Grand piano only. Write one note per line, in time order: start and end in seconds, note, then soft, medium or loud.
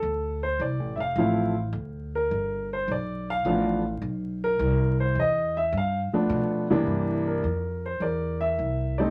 0.00 0.39 A4 medium
0.43 0.60 C5 medium
0.61 0.99 D5 medium
0.96 0.98 E5 medium
1.00 1.17 F5 medium
1.18 1.53 F3 medium
1.18 1.53 A3 medium
1.18 1.53 C4 medium
1.18 1.53 E4 medium
1.18 1.57 F5 medium
2.15 2.67 A#4 medium
2.73 2.89 C5 medium
2.92 3.28 D5 medium
3.30 3.46 F5 loud
3.46 3.81 F3 medium
3.46 3.81 A3 medium
3.46 3.81 B3 medium
3.46 3.81 D4 medium
3.46 3.85 F5 medium
4.44 4.96 A#4 medium
5.00 5.16 C5 medium
5.19 5.56 D#5 medium
5.57 5.73 E5 medium
5.77 6.00 F5 medium
6.13 6.66 F3 medium
6.13 6.66 A3 medium
6.13 6.66 B3 medium
6.13 6.66 D4 medium
6.70 7.41 C2 medium
6.70 7.41 E3 medium
6.70 7.41 G3 medium
6.70 7.41 A#3 medium
6.70 7.42 D4 loud
7.27 7.85 A#4 medium
7.86 8.01 C5 medium
8.02 9.10 A#4 medium
8.02 8.42 D5 medium
8.41 8.99 E5 medium
8.98 9.10 G3 medium
8.98 9.10 A3 medium
8.98 9.10 C4 medium
8.98 9.10 D#4 medium
8.98 9.10 D5 medium